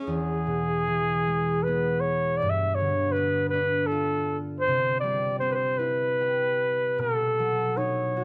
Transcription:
0.00 1.65 G#4 medium
0.00 0.31 C#5 soft
0.00 0.15 E5 medium
0.07 2.45 E2 medium
0.47 2.45 B2 soft
0.87 2.45 E3 soft
1.27 2.45 G#3 soft
1.63 2.02 B4 medium
1.68 3.16 B3 soft
2.00 2.39 C#5 medium
2.37 2.51 D5 loud
2.42 4.71 G2 medium
2.50 2.76 E5 medium
2.75 3.13 C#5 medium
2.80 4.71 D3 soft
3.12 3.49 B4 medium
3.16 4.74 B3 medium
3.49 3.88 B4 medium
3.54 6.33 D4 soft
3.86 4.38 A4 medium
3.92 5.85 F4 medium
4.60 4.98 C5 loud
4.68 7.03 C3 medium
5.00 7.03 G3 soft
5.00 5.37 D5 medium
5.39 7.04 C4 medium
5.39 5.52 C5 medium
5.51 5.54 B4 medium
5.51 5.79 C5 medium
5.78 7.83 E4 medium
5.78 7.02 B4 medium
6.21 7.45 G4 medium
6.98 8.24 B2 medium
6.98 7.79 A4 medium
7.39 8.24 F#3 soft
7.77 8.24 D#4 soft
7.77 8.24 C#5 medium
8.17 8.24 F#4 soft

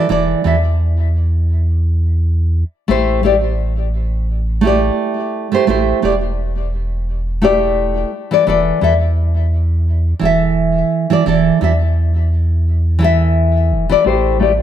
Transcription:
0.09 0.35 E1 medium
0.09 0.41 E3 medium
0.09 0.41 E4 medium
0.09 0.42 A4 medium
0.09 0.42 D5 loud
0.44 2.64 E2 medium
0.44 0.55 E3 medium
0.44 0.55 E4 medium
0.44 0.56 A4 medium
0.44 0.56 E5 medium
2.88 4.91 A1 loud
2.88 3.20 A3 medium
2.88 3.20 E4 medium
2.88 3.21 G4 medium
2.88 3.21 C5 medium
3.23 3.34 A3 medium
3.23 3.34 E4 medium
3.23 3.35 G4 medium
3.23 3.35 D5 medium
4.61 5.47 A3 medium
4.61 5.48 E4 medium
4.61 5.49 G4 medium
4.67 5.50 D5 medium
5.52 5.64 A3 medium
5.52 5.65 E4 medium
5.52 5.65 G4 medium
5.52 5.66 C5 medium
5.67 5.94 A1 loud
5.67 5.99 A3 medium
5.67 5.99 E4 medium
5.67 6.00 G4 medium
5.67 6.00 C5 medium
6.02 8.05 E1 loud
6.02 6.13 A3 medium
6.02 6.13 E4 medium
6.02 6.14 G4 medium
6.02 6.14 D5 medium
7.42 8.10 A3 medium
7.42 8.11 E4 medium
7.42 8.11 G4 medium
7.42 8.12 D5 medium
8.31 8.43 E3 medium
8.31 8.44 E4 medium
8.31 8.44 A4 medium
8.31 8.45 D5 medium
8.47 8.73 E1 loud
8.47 8.78 E3 medium
8.47 8.79 E4 medium
8.47 8.79 A4 medium
8.47 8.80 D5 medium
8.81 10.14 E2 medium
8.81 8.92 E3 medium
8.81 8.92 E4 medium
8.81 8.93 A4 medium
8.81 8.93 E5 medium
10.19 10.84 E1 medium
10.19 11.05 E3 medium
10.19 11.06 E4 medium
10.19 11.07 A4 medium
10.25 11.08 E5 loud
11.10 11.22 E3 medium
11.10 11.23 E4 medium
11.10 11.23 A4 medium
11.10 11.24 D5 medium
11.26 11.52 E1 medium
11.26 11.57 E3 medium
11.26 11.58 E4 medium
11.26 11.59 A4 medium
11.26 11.59 D5 medium
11.61 13.73 E2 medium
11.61 11.71 E3 medium
11.61 11.72 E4 medium
11.61 11.72 A4 medium
11.61 11.73 E5 medium
12.99 13.84 E3 loud
12.99 13.85 E4 medium
12.99 13.86 A4 medium
13.04 13.87 E5 loud
13.71 13.96 E1 medium
13.89 14.02 E3 medium
13.89 14.02 E4 medium
13.89 14.02 A4 medium
13.89 14.03 D5 medium
14.04 14.62 A1 loud
14.04 14.36 A3 medium
14.04 14.37 E4 medium
14.04 14.37 G4 medium
14.04 14.38 C5 medium
14.40 14.50 A3 medium
14.40 14.51 E4 medium
14.40 14.51 G4 medium
14.40 14.52 D5 medium

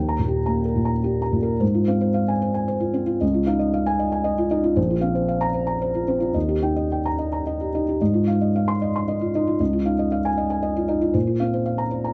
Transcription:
0.00 1.57 D#2 soft
0.00 0.22 G5 soft
0.09 0.40 A#5 medium
0.19 0.65 A#2 soft
0.28 0.59 G4 soft
0.46 0.93 A#3 soft
0.46 0.77 A#5 soft
0.65 0.97 A#4 soft
0.75 1.22 A#2 soft
0.85 1.16 A#5 soft
1.04 1.35 G4 soft
1.22 1.53 A#5 soft
1.32 1.61 A#2 soft
1.43 1.61 A#4 soft
1.60 3.17 G#2 medium
1.60 1.82 C5 soft
1.74 1.96 F4 soft
1.88 2.31 C4 soft
1.88 2.10 F5 soft
2.01 2.23 C5 soft
2.14 2.36 F5 soft
2.28 2.50 G#5 medium
2.42 2.63 C5 soft
2.54 2.76 G#5 soft
2.68 2.90 C5 medium
2.80 3.02 F4 soft
2.94 3.21 C4 soft
2.94 3.16 C5 soft
3.06 3.21 F4 medium
3.21 4.73 C#2 medium
3.21 3.43 D#5 soft
3.34 3.56 F4 soft
3.47 3.89 D#4 medium
3.47 3.68 F5 medium
3.59 3.81 D#5 soft
3.74 3.95 F5 medium
3.86 4.08 G#5 medium
3.99 4.20 D#5 soft
4.12 4.33 G#5 soft
4.24 4.46 D#5 medium
4.38 4.59 F4 medium
4.51 4.77 D#4 soft
4.51 4.72 D#5 medium
4.64 4.77 F4 medium
4.76 6.31 A#1 medium
4.76 4.97 C5 medium
4.90 5.11 F4 soft
5.01 5.44 C4 medium
5.01 5.23 F5 medium
5.15 5.36 C5 soft
5.28 5.49 F5 medium
5.41 5.62 A#5 medium
5.54 5.75 C5 soft
5.67 5.88 A#5 soft
5.82 6.03 C5 medium
5.95 6.16 F4 soft
6.08 6.35 C4 soft
6.08 6.30 C5 soft
6.20 6.35 F4 soft
6.34 7.95 D#2 soft
6.34 6.57 D#5 soft
6.49 6.71 G4 soft
6.62 7.07 D#4 soft
6.62 6.85 G5 soft
6.76 6.99 D#5 soft
6.92 7.13 G5 soft
7.05 7.27 A#5 medium
7.19 7.40 D#5 soft
7.32 7.54 A#5 soft
7.47 7.68 D#5 soft
7.61 7.82 G4 soft
7.75 8.01 D#4 soft
7.75 7.96 D#5 soft
7.89 8.01 G4 soft
8.01 9.57 G#2 soft
8.01 8.22 D#5 soft
8.14 8.35 F4 soft
8.27 8.70 D#4 soft
8.27 8.49 F5 soft
8.41 8.62 D#5 soft
8.56 8.76 F5 soft
8.68 8.89 C6 medium
8.82 9.02 D#5 soft
8.96 9.16 C6 soft
9.08 9.29 D#5 soft
9.21 9.42 F4 soft
9.35 9.61 D#4 soft
9.35 9.56 D#5 soft
9.47 9.60 F4 soft
9.60 11.11 C#2 soft
9.60 9.81 D#5 soft
9.73 9.94 F4 soft
9.86 10.27 D#4 soft
9.86 10.07 F5 medium
9.99 10.20 D#5 soft
10.12 10.33 F5 medium
10.25 10.46 G#5 medium
10.38 10.58 D#5 soft
10.50 10.71 G#5 soft
10.63 10.84 D#5 medium
10.76 10.97 F4 soft
10.88 11.15 D#4 soft
10.88 11.10 D#5 soft
11.01 11.15 F4 soft
11.14 12.13 A#2 medium
11.14 11.35 C5 soft
11.27 11.48 F4 soft
11.40 11.82 C4 soft
11.40 11.61 F5 soft
11.54 11.75 C5 soft
11.66 11.87 F5 soft
11.78 12.00 A#5 medium
11.91 12.13 C5 soft
12.04 12.13 A#5 soft

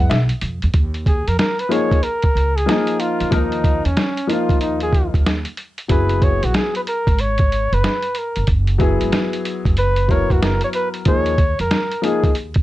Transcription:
0.10 0.29 B1 loud
0.10 0.17 E5 medium
0.10 snare loud
0.10 closed hi-hat medium
0.29 closed hi-hat medium
0.41 0.61 F2 medium
0.41 closed hi-hat medium
0.62 0.73 E2 medium
0.62 closed hi-hat medium
0.74 1.23 D#2 loud
0.74 kick loud
0.74 closed hi-hat loud
0.94 closed hi-hat soft
1.06 1.29 G#4 medium
1.06 kick loud
1.06 closed hi-hat medium
1.28 1.38 F2 medium
1.28 1.38 A#4 loud
1.28 closed hi-hat medium
1.39 1.61 A#4 loud
1.39 snare loud
1.39 closed hi-hat medium
1.59 1.73 B4 medium
1.59 closed hi-hat medium
1.69 1.95 F3 medium
1.69 1.96 A#3 medium
1.69 1.96 D#4 medium
1.69 1.97 G#4 medium
1.69 2.05 C#5 loud
1.69 closed hi-hat medium
1.91 2.02 D#2 medium
1.91 kick medium
1.91 closed hi-hat medium
2.03 2.58 A#4 loud
2.03 closed hi-hat medium
2.22 kick medium
2.22 closed hi-hat soft
2.35 2.65 C#2 medium
2.35 closed hi-hat medium
2.56 3.01 G#4 loud
2.56 closed hi-hat soft
2.66 3.29 F3 medium
2.66 3.30 A#3 medium
2.66 3.31 D#4 medium
2.66 3.32 A#4 medium
2.66 snare loud
2.66 closed hi-hat medium
2.87 closed hi-hat medium
3.00 3.34 F4 medium
3.00 closed hi-hat medium
3.20 3.31 E2 medium
3.20 closed hi-hat soft
3.31 3.81 D#2 loud
3.31 3.80 F3 medium
3.31 3.81 A#3 medium
3.31 3.87 D#4 loud
3.31 3.81 D#4 medium
3.31 3.82 A#4 medium
3.31 kick loud
3.31 closed hi-hat loud
3.52 closed hi-hat soft
3.64 kick medium
3.64 closed hi-hat medium
3.85 3.96 E2 medium
3.85 4.31 C#4 medium
3.85 closed hi-hat medium
3.97 snare loud
3.97 closed hi-hat medium
4.17 closed hi-hat medium
4.27 5.20 F3 medium
4.27 5.21 A#3 medium
4.27 5.21 D#4 medium
4.27 4.61 F4 medium
4.27 5.22 F4 medium
4.27 closed hi-hat medium
4.49 5.10 D#2 medium
4.49 kick medium
4.49 closed hi-hat medium
4.61 4.81 D#4 medium
4.61 closed hi-hat medium
4.80 5.12 G#4 medium
4.80 closed hi-hat soft
4.93 kick medium
4.93 closed hi-hat medium
5.14 5.44 D#2 loud
5.14 kick medium
5.14 closed hi-hat soft
5.26 snare loud
5.26 closed hi-hat medium
5.45 closed hi-hat medium
5.57 closed hi-hat medium
5.78 closed hi-hat soft
5.88 6.39 F#1 loud
5.88 6.81 F#3 medium
5.88 6.82 B3 medium
5.88 6.82 E4 medium
5.88 6.83 G#4 medium
5.88 6.25 B4 loud
5.88 kick loud
5.88 closed hi-hat loud
6.09 closed hi-hat soft
6.22 6.46 C#5 loud
6.22 kick loud
6.22 closed hi-hat medium
6.43 6.54 A#1 medium
6.43 6.57 F#4 loud
6.43 closed hi-hat medium
6.54 6.76 G#4 medium
6.54 snare loud
6.54 closed hi-hat medium
6.75 6.81 B4 medium
6.75 closed hi-hat medium
6.87 7.22 A#4 loud
6.87 closed hi-hat medium
7.07 7.68 G#1 medium
7.07 kick loud
7.07 closed hi-hat medium
7.19 7.75 C#5 loud
7.19 closed hi-hat medium
7.38 kick medium
7.38 closed hi-hat soft
7.52 closed hi-hat medium
7.72 7.83 F#1 medium
7.72 8.19 B4 loud
7.72 closed hi-hat soft
7.84 snare loud
7.84 closed hi-hat medium
8.02 closed hi-hat medium
8.15 8.49 A#4 medium
8.15 closed hi-hat medium
8.36 8.47 G1 medium
8.36 closed hi-hat soft
8.47 8.97 F#1 loud
8.47 kick loud
8.47 closed hi-hat loud
8.67 closed hi-hat soft
8.78 9.72 F#3 medium
8.78 9.72 B3 medium
8.78 9.73 E4 medium
8.78 9.73 G#4 medium
8.78 kick loud
8.78 closed hi-hat medium
9.01 9.12 G#1 medium
9.01 closed hi-hat medium
9.12 snare loud
9.12 closed hi-hat medium
9.33 closed hi-hat medium
9.45 closed hi-hat medium
9.65 10.26 F#1 medium
9.65 kick loud
9.65 closed hi-hat medium
9.77 10.12 B4 loud
9.77 closed hi-hat medium
9.96 closed hi-hat soft
10.08 11.01 F#3 medium
10.08 11.01 B3 medium
10.08 11.02 E4 medium
10.08 11.02 A#4 medium
10.08 10.33 C#5 loud
10.08 kick medium
10.08 closed hi-hat medium
10.30 10.60 F#1 medium
10.30 10.44 F#4 medium
10.30 kick medium
10.30 closed hi-hat soft
10.42 10.63 A#4 loud
10.42 snare loud
10.42 closed hi-hat medium
10.61 10.69 C#5 medium
10.61 closed hi-hat medium
10.73 10.89 B4 loud
10.73 closed hi-hat medium
10.94 closed hi-hat soft
11.05 11.55 D#2 loud
11.05 11.31 F3 medium
11.05 11.32 A#3 medium
11.05 11.32 D#4 medium
11.05 11.33 G#4 medium
11.05 11.57 C#5 loud
11.05 kick loud
11.05 closed hi-hat loud
11.26 closed hi-hat soft
11.38 kick loud
11.38 closed hi-hat medium
11.59 11.70 F2 medium
11.59 12.06 A#4 loud
11.59 closed hi-hat medium
11.71 snare loud
11.71 closed hi-hat medium
11.92 closed hi-hat medium
12.02 12.28 F3 medium
12.02 12.28 A#3 medium
12.02 12.29 D#4 medium
12.02 12.36 G#4 medium
12.02 12.29 G#4 medium
12.02 closed hi-hat medium
12.24 12.62 D#2 medium
12.24 kick loud
12.24 closed hi-hat medium
12.35 closed hi-hat medium
12.54 kick medium
12.54 closed hi-hat soft

